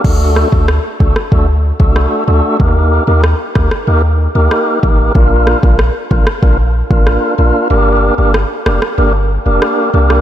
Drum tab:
CC |x---------------|----------------|----------------|----------------|
SD |--r-r--r----r---|----r-rr----r---|--r-r--r----r---|----r-rr----r--r|
BD |o--o--o-o--o----|o-----o-------o-|o--o--o-o--o----|----------------|